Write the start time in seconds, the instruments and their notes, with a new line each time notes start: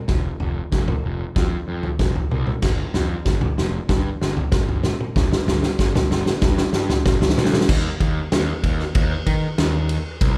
0.08 picked electric bass F1, kick, snare, floor tom
0.40 picked electric bass F1, floor tom
0.72 picked electric bass F1, kick, snare
0.88 floor tom, mid tom
1.04 picked electric bass F1
1.36 picked electric bass F2, kick, snare, floor tom
1.68 picked electric bass F2
1.83 floor tom
1.99 picked electric bass F1, kick, snare, mid tom
2.15 floor tom
2.31 picked electric bass C2, mid tom
2.47 mid tom
2.62 picked electric bass G1, kick, snare, floor tom, crash
2.94 picked electric bass F2, snare, floor tom
3.25 picked electric bass G1, kick, snare
3.41 floor tom, mid tom
3.58 picked electric bass F1, snare
3.89 picked electric bass G2, kick, snare, floor tom
4.21 picked electric bass G1, snare
4.37 floor tom
4.52 picked electric bass G1, kick, snare, mid tom
4.68 floor tom
4.83 snare, mid tom
5.00 mid tom
5.16 picked electric bass G1, kick, snare, floor tom
5.32 snare
5.47 picked electric bass G1, snare, floor tom
5.63 snare
5.79 picked electric bass G1, kick, snare
5.95 snare, floor tom, mid tom
6.10 picked electric bass G1, snare
6.26 snare
6.42 picked electric bass G2, kick, snare, floor tom
6.58 snare
6.73 picked electric bass G2, snare
6.90 snare, floor tom
7.06 picked electric bass G1, kick, snare, mid tom
7.22 snare, floor tom
7.29 snare
7.38 picked electric bass D2, snare, mid tom
7.45 snare
7.53 snare, mid tom
7.61 snare
7.69 picked electric bass D#2, kick, crash
8.00 picked electric bass D#2, kick, ride
8.32 picked electric bass D#2, snare, ride
8.63 picked electric bass D#2, kick, ride
8.79 snare
8.95 picked electric bass D#2, kick, ride
9.26 picked electric bass D#3, kick, ride
9.58 picked electric bass D#2, snare, ride
9.89 ride
10.21 picked electric bass C2, kick, ride